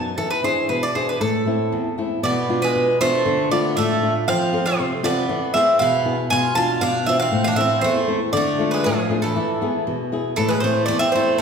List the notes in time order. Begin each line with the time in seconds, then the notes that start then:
Already playing: F#2 F#3 B3 D#4
0.18 E3 A4
0.31 B4
0.43 D4 E4 G#4 C5
0.69 B2 B4
0.83 D5
0.95 D4 E4 G#4 C5
1.09 B4
1.20 A2 A4
1.46 A3 C4 E4
1.72 E2
1.98 A3 C4 E4
2.23 B2 B3 D5
2.49 B3 D4 F4
2.62 G#3 B4
2.75 B2
3.01 A3 B3 D4 F4 C5
3.26 D3
3.51 A3 B3 D4 F4 D5
3.77 A2 A3 E5
4.02 A3 D4 F4
4.28 F3 C4 F5
4.53 C4 F4 A4
4.66 A3 C5
4.80 C3
5.03 B3 C4 F4 A4 D5
5.29 E3
5.54 B3 C4 E4 G#4 E5
5.79 B2 B3 F5
6.05 B3 E4 G#4
6.30 B2 F4 G#5
6.55 B3 D4 F4 A5
6.81 B2 D4 F5
7.06 B3 C4 D4 F4 E5
7.20 C4 F5
7.32 A2
7.44 D4 F5
7.56 A3 C4 E4 E5
7.61 C4
7.81 E2 A3 C5
8.08 A3 C4 E4
8.33 D3 D5
8.37 A3
8.59 A3 D4 F4
8.71 G#3 B4
8.84 A2 F3 G#4
9.10 A3 D4 F4
9.22 E3 A4
9.36 E3
9.62 B3 E4 G#4
9.87 B2
10.12 B3 E4 G#4
10.36 A2 E3 A4
10.49 G#3 B4
10.60 A3 C4 E4 C5
10.86 E2 A3 D5
10.99 C4 E5
11.12 A3 C4 E4 C5
11.38 A4